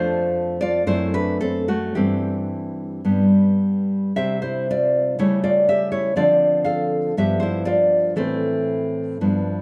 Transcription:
nylon-string guitar
Already playing: F2 A3 D4 F4 C5
0.61 F4 D5
0.87 F#2 A3 C4 E4 C5
1.14 D4 B4
1.41 C4 A4
1.68 A3 F#4
1.95 G2 E3 C4 G4
3.05 G2 G3 B3
4.16 C3 G3 C4 G4 E5
4.42 E4 C5
4.71 F4 D5
5.19 C#3 G3 A3 E4 C#5
5.44 F4 D5
5.69 G4 E5
5.92 E4 C#5
6.16 D3 F3 C4 F4 D5
6.64 A4 F5
7.17 G2 F3 B3 G4 E5
7.40 E4 C5
7.65 F4 D5
8.16 A2 E3 C4 A4
9.21 G2 F3 B3

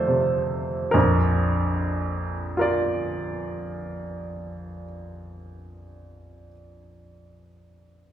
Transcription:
grand piano
Already playing: F2 D#3 F3 A3 F4 A4 C5
0.07 C3
0.91 A#1 F2 A#4
2.57 F4 A#4
2.61 D5

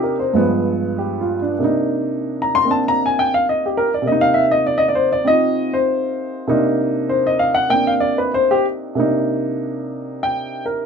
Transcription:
upright piano
Already playing: C3 A#3 D4 D#4 G4
0.03 A#4
0.19 C5
0.33 G2 F3 G#3 B3
0.98 G4
1.21 F4
1.42 D4
1.59 C3 A#3 D4
1.64 D#4
2.42 A#5
2.55 C6
2.65 A#3 C4 D4
2.71 A5
2.88 A#5
3.06 G#5
3.19 G5
3.34 F5
3.49 D#5
3.66 G4
3.77 A#4
3.94 D5
4.02 C3 A#3
4.07 D#5
4.12 D#4
4.21 F5
4.34 E5
4.51 D#5
4.67 D5
4.78 D#5
4.88 D5
4.95 C5
5.13 D5
5.24 C4 D#4 D#5
5.28 F4
5.74 C5
6.47 C3 A#3 D4 D#4
7.09 C5
7.27 D#5
7.39 F5
7.55 F#5
7.69 A#3 C4 G5
7.73 D4
7.87 F5
8.00 D5
8.18 B4
8.34 C5
8.51 G4
8.95 C3 A#3 D4
9.00 D#4
10.23 G5
10.66 A#4

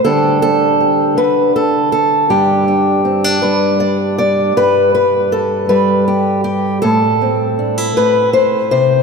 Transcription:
steel-string acoustic guitar
0.05 D3 G3 D4 G4 A4
0.42 A4
0.80 G4
1.17 D3 B4
1.56 A4
1.92 A4
2.30 G2 G3 D4 G4
2.68 D4
3.05 C4
3.24 D4
3.42 G3 B4
3.80 D5
4.18 D4 D5
4.56 G2 B4
4.95 B4
5.32 A4
5.69 G3 B4
6.08 G4
6.44 G4
6.82 A2 A4
7.22 C4
7.59 D4
7.78 E4
7.96 A2 B4
8.33 C5
8.71 C3 C5

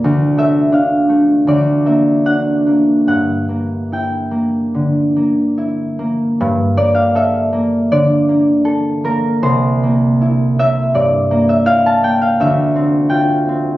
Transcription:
harp
Already playing: C5 D5
0.04 D2
0.37 A3 E5
0.72 D4 F5
1.09 A3
1.47 D2 D5
1.86 A#3 E5
2.25 D4 F#5
2.67 A#3
3.07 G2 F#5
3.49 A#3
3.92 E4 G5
4.31 A#3
4.74 D3
5.16 A#3
5.58 E4
5.99 A#3
6.41 G2
6.77 A#3 D5
6.95 F5
7.15 A4 E5
7.53 A#3
7.92 D3 D5
8.29 A#3
8.65 A4
9.04 A#3 A#4
9.43 C2 C5
9.83 A#3
10.21 E4
10.59 A#3 E5
10.94 G2 D5
11.31 A#3
11.49 E5
11.66 E4 F5
11.86 A5
12.03 A#3 G5
12.21 F5
12.40 D2 E5
12.76 C4
13.10 F4 G5
13.48 C4

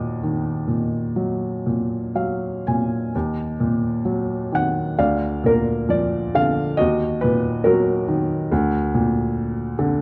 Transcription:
felt piano
Already playing: D#2 A#2 F#4 D#5
0.23 D#3
0.67 A#2
1.16 F#3
1.66 A#2
2.15 F#3 F5
2.67 A#2 G#5
3.15 D#2
3.60 A#2
4.05 F#3
4.52 D#3 F#5
4.98 D2 D5 F5
5.44 A#2 A#4
5.89 F3 D5
6.35 D3 F5
6.77 D#2 F#4 D#5
7.21 A#2 B4
7.64 F#3 F#4 A#4
8.08 D#3
8.52 D2
8.94 A#2
9.79 D3

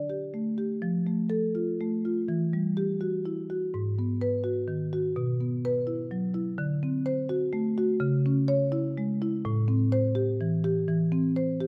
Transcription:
marimba
Already playing: D3 D5
0.10 G4
0.34 A3
0.58 G4
0.82 F3
1.07 A3
1.30 A4
1.55 F4
1.81 A3
2.05 F4
2.28 E3
2.53 G3
2.77 G4
3.01 F#4
3.26 E4
3.50 F#4
3.74 G#2
3.99 B3
4.21 B4
4.44 F#4
4.68 D#3
4.93 F#4
5.16 B2
5.40 B3
5.65 B4
5.87 E4
6.11 F#3
6.34 E4
6.58 D3
6.83 C4
7.06 C5
7.29 F#4
7.53 A3
7.78 F#4
8.00 C#3
8.26 C#4
8.48 C#5
8.72 E4
8.98 G#3
9.22 E4
9.45 A2
9.68 C4
9.92 C5
10.15 G4
10.41 E3
10.64 G4
10.88 E3
11.12 C4
11.36 C5
11.60 G4

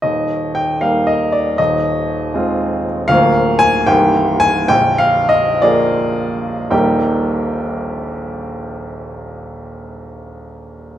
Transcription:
grand piano
0.02 D#1 D#2 D#5
0.55 G5
0.81 G3 A#3 D#4 F5
1.07 D#5
1.32 D5
1.58 D#1 D#2 D#5
2.34 G#3 C4 F4
3.08 D1 D2 F3 A#3 A#4 F5
3.59 G#5
3.87 C1 C2 D#3 A#3 G4 G5
4.40 G#5
4.68 A#0 A#1 G5
4.98 F5
5.29 D#5
5.62 F3 A#3 G#4 D5
6.71 D#1 A#1 G3 A#3 D#4 G4 G5

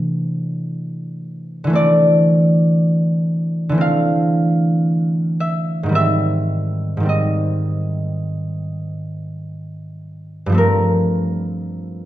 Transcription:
harp
Already playing: C3 E3 A3 D4 C5 D5
1.64 D3 E3
1.70 A3 C4
1.75 D5
3.69 D3 E3
3.74 A3 C4
3.81 F5
5.40 E5
5.83 G#2 D#3
5.89 G3 C4
5.95 E5
6.97 G#2 D#3
7.03 G3 C4
7.09 D#5
10.46 G2 F3
10.52 A3 C4
10.58 A#4

